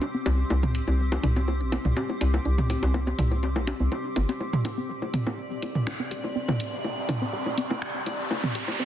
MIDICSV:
0, 0, Header, 1, 6, 480
1, 0, Start_track
1, 0, Tempo, 487805
1, 495, Time_signature, 4, 2, 24, 8
1, 8708, End_track
2, 0, Start_track
2, 0, Title_t, "Ambient pad"
2, 0, Program_c, 0, 92
2, 0, Note_on_c, 0, 60, 75
2, 0, Note_on_c, 0, 67, 88
2, 0, Note_on_c, 0, 84, 76
2, 0, Note_on_c, 0, 86, 92
2, 4335, Note_off_c, 0, 84, 0
2, 4335, Note_off_c, 0, 86, 0
2, 4426, Note_on_c, 0, 74, 75
2, 5036, Note_on_c, 0, 84, 72
2, 8708, Note_off_c, 0, 60, 0
2, 8708, Note_off_c, 0, 67, 0
2, 8708, Note_off_c, 0, 74, 0
2, 8708, Note_off_c, 0, 84, 0
2, 8708, End_track
3, 0, Start_track
3, 0, Title_t, "Synth arpeggio sound"
3, 0, Program_c, 1, 84
3, 15, Note_on_c, 1, 62, 106
3, 70, Note_off_c, 1, 62, 0
3, 142, Note_on_c, 1, 60, 102
3, 175, Note_off_c, 1, 60, 0
3, 255, Note_on_c, 1, 67, 95
3, 310, Note_off_c, 1, 67, 0
3, 496, Note_on_c, 1, 60, 99
3, 532, Note_off_c, 1, 60, 0
3, 622, Note_on_c, 1, 60, 101
3, 655, Note_off_c, 1, 60, 0
3, 1215, Note_on_c, 1, 62, 99
3, 1270, Note_off_c, 1, 62, 0
3, 1342, Note_on_c, 1, 60, 103
3, 1375, Note_off_c, 1, 60, 0
3, 1455, Note_on_c, 1, 67, 101
3, 1510, Note_off_c, 1, 67, 0
3, 1695, Note_on_c, 1, 60, 101
3, 1732, Note_off_c, 1, 60, 0
3, 1822, Note_on_c, 1, 60, 95
3, 1855, Note_off_c, 1, 60, 0
3, 2416, Note_on_c, 1, 62, 99
3, 2470, Note_off_c, 1, 62, 0
3, 2542, Note_on_c, 1, 60, 97
3, 2575, Note_off_c, 1, 60, 0
3, 2655, Note_on_c, 1, 67, 104
3, 2710, Note_off_c, 1, 67, 0
3, 2894, Note_on_c, 1, 60, 100
3, 2931, Note_off_c, 1, 60, 0
3, 3022, Note_on_c, 1, 60, 101
3, 3055, Note_off_c, 1, 60, 0
3, 3614, Note_on_c, 1, 62, 100
3, 3670, Note_off_c, 1, 62, 0
3, 3741, Note_on_c, 1, 60, 96
3, 3774, Note_off_c, 1, 60, 0
3, 3854, Note_on_c, 1, 67, 105
3, 3910, Note_off_c, 1, 67, 0
3, 4094, Note_on_c, 1, 60, 99
3, 4132, Note_off_c, 1, 60, 0
3, 4220, Note_on_c, 1, 60, 97
3, 4254, Note_off_c, 1, 60, 0
3, 4574, Note_on_c, 1, 62, 100
3, 4630, Note_off_c, 1, 62, 0
3, 4701, Note_on_c, 1, 60, 99
3, 4734, Note_off_c, 1, 60, 0
3, 4814, Note_on_c, 1, 67, 95
3, 4870, Note_off_c, 1, 67, 0
3, 5054, Note_on_c, 1, 60, 99
3, 5091, Note_off_c, 1, 60, 0
3, 5181, Note_on_c, 1, 60, 98
3, 5214, Note_off_c, 1, 60, 0
3, 5774, Note_on_c, 1, 62, 108
3, 5830, Note_off_c, 1, 62, 0
3, 5901, Note_on_c, 1, 60, 99
3, 5934, Note_off_c, 1, 60, 0
3, 6015, Note_on_c, 1, 67, 105
3, 6070, Note_off_c, 1, 67, 0
3, 6255, Note_on_c, 1, 60, 99
3, 6292, Note_off_c, 1, 60, 0
3, 6381, Note_on_c, 1, 60, 102
3, 6414, Note_off_c, 1, 60, 0
3, 6975, Note_on_c, 1, 62, 101
3, 7030, Note_off_c, 1, 62, 0
3, 7101, Note_on_c, 1, 60, 104
3, 7134, Note_off_c, 1, 60, 0
3, 7214, Note_on_c, 1, 67, 97
3, 7270, Note_off_c, 1, 67, 0
3, 7454, Note_on_c, 1, 60, 104
3, 7491, Note_off_c, 1, 60, 0
3, 7581, Note_on_c, 1, 60, 98
3, 7614, Note_off_c, 1, 60, 0
3, 8175, Note_on_c, 1, 62, 92
3, 8230, Note_off_c, 1, 62, 0
3, 8301, Note_on_c, 1, 60, 93
3, 8334, Note_off_c, 1, 60, 0
3, 8415, Note_on_c, 1, 67, 97
3, 8470, Note_off_c, 1, 67, 0
3, 8655, Note_on_c, 1, 60, 91
3, 8692, Note_off_c, 1, 60, 0
3, 8708, End_track
4, 0, Start_track
4, 0, Title_t, "FM bass"
4, 0, Program_c, 2, 39
4, 255, Note_on_c, 2, 36, 97
4, 433, Note_off_c, 2, 36, 0
4, 495, Note_on_c, 2, 36, 94
4, 806, Note_off_c, 2, 36, 0
4, 862, Note_on_c, 2, 36, 87
4, 1165, Note_off_c, 2, 36, 0
4, 1215, Note_on_c, 2, 36, 95
4, 1582, Note_on_c, 2, 34, 92
4, 1597, Note_off_c, 2, 36, 0
4, 1752, Note_off_c, 2, 34, 0
4, 1822, Note_on_c, 2, 36, 82
4, 1904, Note_off_c, 2, 36, 0
4, 2175, Note_on_c, 2, 36, 100
4, 2353, Note_off_c, 2, 36, 0
4, 2415, Note_on_c, 2, 36, 91
4, 2726, Note_off_c, 2, 36, 0
4, 2782, Note_on_c, 2, 36, 87
4, 3085, Note_off_c, 2, 36, 0
4, 3135, Note_on_c, 2, 36, 93
4, 3501, Note_on_c, 2, 34, 88
4, 3516, Note_off_c, 2, 36, 0
4, 3672, Note_off_c, 2, 34, 0
4, 3741, Note_on_c, 2, 36, 81
4, 3824, Note_off_c, 2, 36, 0
4, 4095, Note_on_c, 2, 31, 100
4, 4187, Note_off_c, 2, 31, 0
4, 8708, End_track
5, 0, Start_track
5, 0, Title_t, "Riser"
5, 0, Program_c, 3, 103
5, 4335, Note_on_c, 3, 60, 78
5, 8708, Note_off_c, 3, 60, 0
5, 8708, End_track
6, 0, Start_track
6, 0, Title_t, "Drums"
6, 15, Note_on_c, 9, 60, 36
6, 114, Note_off_c, 9, 60, 0
6, 255, Note_on_c, 9, 42, 80
6, 255, Note_on_c, 9, 60, 76
6, 255, Note_on_c, 9, 61, 42
6, 353, Note_off_c, 9, 60, 0
6, 353, Note_off_c, 9, 61, 0
6, 354, Note_off_c, 9, 42, 0
6, 496, Note_on_c, 9, 60, 38
6, 496, Note_on_c, 9, 61, 68
6, 594, Note_off_c, 9, 60, 0
6, 594, Note_off_c, 9, 61, 0
6, 622, Note_on_c, 9, 45, 85
6, 720, Note_off_c, 9, 45, 0
6, 735, Note_on_c, 9, 42, 84
6, 735, Note_on_c, 9, 75, 66
6, 834, Note_off_c, 9, 42, 0
6, 834, Note_off_c, 9, 75, 0
6, 862, Note_on_c, 9, 60, 38
6, 862, Note_on_c, 9, 61, 40
6, 961, Note_off_c, 9, 60, 0
6, 961, Note_off_c, 9, 61, 0
6, 1102, Note_on_c, 9, 60, 78
6, 1102, Note_on_c, 9, 61, 72
6, 1200, Note_off_c, 9, 60, 0
6, 1200, Note_off_c, 9, 61, 0
6, 1215, Note_on_c, 9, 42, 85
6, 1215, Note_on_c, 9, 45, 83
6, 1313, Note_off_c, 9, 45, 0
6, 1314, Note_off_c, 9, 42, 0
6, 1342, Note_on_c, 9, 60, 41
6, 1440, Note_off_c, 9, 60, 0
6, 1455, Note_on_c, 9, 61, 39
6, 1553, Note_off_c, 9, 61, 0
6, 1581, Note_on_c, 9, 75, 66
6, 1680, Note_off_c, 9, 75, 0
6, 1695, Note_on_c, 9, 42, 84
6, 1695, Note_on_c, 9, 60, 39
6, 1695, Note_on_c, 9, 61, 72
6, 1793, Note_off_c, 9, 60, 0
6, 1793, Note_off_c, 9, 61, 0
6, 1794, Note_off_c, 9, 42, 0
6, 1821, Note_on_c, 9, 45, 73
6, 1920, Note_off_c, 9, 45, 0
6, 1934, Note_on_c, 9, 60, 79
6, 2033, Note_off_c, 9, 60, 0
6, 2062, Note_on_c, 9, 61, 40
6, 2160, Note_off_c, 9, 61, 0
6, 2175, Note_on_c, 9, 42, 81
6, 2175, Note_on_c, 9, 60, 37
6, 2274, Note_off_c, 9, 42, 0
6, 2274, Note_off_c, 9, 60, 0
6, 2301, Note_on_c, 9, 61, 69
6, 2400, Note_off_c, 9, 61, 0
6, 2415, Note_on_c, 9, 75, 64
6, 2513, Note_off_c, 9, 75, 0
6, 2542, Note_on_c, 9, 45, 94
6, 2542, Note_on_c, 9, 60, 40
6, 2640, Note_off_c, 9, 45, 0
6, 2640, Note_off_c, 9, 60, 0
6, 2655, Note_on_c, 9, 42, 89
6, 2656, Note_on_c, 9, 61, 42
6, 2754, Note_off_c, 9, 42, 0
6, 2754, Note_off_c, 9, 61, 0
6, 2782, Note_on_c, 9, 60, 78
6, 2881, Note_off_c, 9, 60, 0
6, 2896, Note_on_c, 9, 61, 77
6, 2994, Note_off_c, 9, 61, 0
6, 3022, Note_on_c, 9, 60, 41
6, 3121, Note_off_c, 9, 60, 0
6, 3135, Note_on_c, 9, 42, 90
6, 3135, Note_on_c, 9, 45, 86
6, 3233, Note_off_c, 9, 42, 0
6, 3234, Note_off_c, 9, 45, 0
6, 3262, Note_on_c, 9, 61, 42
6, 3262, Note_on_c, 9, 75, 64
6, 3360, Note_off_c, 9, 61, 0
6, 3360, Note_off_c, 9, 75, 0
6, 3375, Note_on_c, 9, 60, 40
6, 3474, Note_off_c, 9, 60, 0
6, 3502, Note_on_c, 9, 61, 72
6, 3600, Note_off_c, 9, 61, 0
6, 3615, Note_on_c, 9, 42, 86
6, 3615, Note_on_c, 9, 60, 82
6, 3713, Note_off_c, 9, 42, 0
6, 3714, Note_off_c, 9, 60, 0
6, 3855, Note_on_c, 9, 60, 40
6, 3855, Note_on_c, 9, 61, 40
6, 3954, Note_off_c, 9, 60, 0
6, 3954, Note_off_c, 9, 61, 0
6, 4095, Note_on_c, 9, 42, 83
6, 4095, Note_on_c, 9, 61, 70
6, 4095, Note_on_c, 9, 75, 68
6, 4193, Note_off_c, 9, 42, 0
6, 4194, Note_off_c, 9, 61, 0
6, 4194, Note_off_c, 9, 75, 0
6, 4221, Note_on_c, 9, 42, 34
6, 4222, Note_on_c, 9, 60, 38
6, 4320, Note_off_c, 9, 42, 0
6, 4320, Note_off_c, 9, 60, 0
6, 4335, Note_on_c, 9, 61, 43
6, 4433, Note_off_c, 9, 61, 0
6, 4461, Note_on_c, 9, 45, 90
6, 4559, Note_off_c, 9, 45, 0
6, 4575, Note_on_c, 9, 42, 90
6, 4575, Note_on_c, 9, 61, 72
6, 4673, Note_off_c, 9, 42, 0
6, 4673, Note_off_c, 9, 61, 0
6, 4941, Note_on_c, 9, 61, 44
6, 5040, Note_off_c, 9, 61, 0
6, 5055, Note_on_c, 9, 42, 88
6, 5055, Note_on_c, 9, 45, 96
6, 5055, Note_on_c, 9, 75, 64
6, 5153, Note_off_c, 9, 42, 0
6, 5154, Note_off_c, 9, 45, 0
6, 5154, Note_off_c, 9, 75, 0
6, 5182, Note_on_c, 9, 61, 75
6, 5280, Note_off_c, 9, 61, 0
6, 5535, Note_on_c, 9, 42, 91
6, 5535, Note_on_c, 9, 61, 46
6, 5633, Note_off_c, 9, 42, 0
6, 5634, Note_off_c, 9, 61, 0
6, 5662, Note_on_c, 9, 45, 77
6, 5760, Note_off_c, 9, 45, 0
6, 5775, Note_on_c, 9, 26, 107
6, 5775, Note_on_c, 9, 61, 76
6, 5873, Note_off_c, 9, 26, 0
6, 5873, Note_off_c, 9, 61, 0
6, 5902, Note_on_c, 9, 75, 60
6, 6000, Note_off_c, 9, 75, 0
6, 6015, Note_on_c, 9, 42, 88
6, 6113, Note_off_c, 9, 42, 0
6, 6142, Note_on_c, 9, 61, 42
6, 6240, Note_off_c, 9, 61, 0
6, 6381, Note_on_c, 9, 45, 91
6, 6381, Note_on_c, 9, 61, 79
6, 6480, Note_off_c, 9, 45, 0
6, 6480, Note_off_c, 9, 61, 0
6, 6494, Note_on_c, 9, 42, 99
6, 6593, Note_off_c, 9, 42, 0
6, 6735, Note_on_c, 9, 61, 47
6, 6735, Note_on_c, 9, 75, 66
6, 6833, Note_off_c, 9, 61, 0
6, 6833, Note_off_c, 9, 75, 0
6, 6974, Note_on_c, 9, 45, 92
6, 6974, Note_on_c, 9, 61, 80
6, 6975, Note_on_c, 9, 42, 96
6, 7073, Note_off_c, 9, 42, 0
6, 7073, Note_off_c, 9, 45, 0
6, 7073, Note_off_c, 9, 61, 0
6, 7341, Note_on_c, 9, 61, 45
6, 7440, Note_off_c, 9, 61, 0
6, 7455, Note_on_c, 9, 42, 97
6, 7553, Note_off_c, 9, 42, 0
6, 7581, Note_on_c, 9, 61, 80
6, 7581, Note_on_c, 9, 75, 63
6, 7680, Note_off_c, 9, 61, 0
6, 7680, Note_off_c, 9, 75, 0
6, 7695, Note_on_c, 9, 26, 108
6, 7793, Note_off_c, 9, 26, 0
6, 7935, Note_on_c, 9, 42, 94
6, 7935, Note_on_c, 9, 61, 46
6, 8033, Note_off_c, 9, 42, 0
6, 8034, Note_off_c, 9, 61, 0
6, 8175, Note_on_c, 9, 61, 82
6, 8273, Note_off_c, 9, 61, 0
6, 8302, Note_on_c, 9, 45, 96
6, 8400, Note_off_c, 9, 45, 0
6, 8415, Note_on_c, 9, 42, 99
6, 8416, Note_on_c, 9, 75, 59
6, 8513, Note_off_c, 9, 42, 0
6, 8514, Note_off_c, 9, 75, 0
6, 8542, Note_on_c, 9, 61, 46
6, 8641, Note_off_c, 9, 61, 0
6, 8708, End_track
0, 0, End_of_file